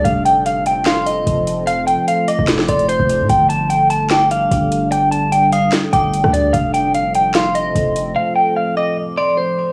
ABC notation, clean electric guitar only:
X:1
M:4/4
L:1/8
Q:1/4=148
K:Fmix
V:1 name="Clean electric guitar"
f g f g f e3 | f g f e z d c2 | g a g a g f3 | g a g f z g2 d |
f g f g f e3 | f g f e z d c2 |]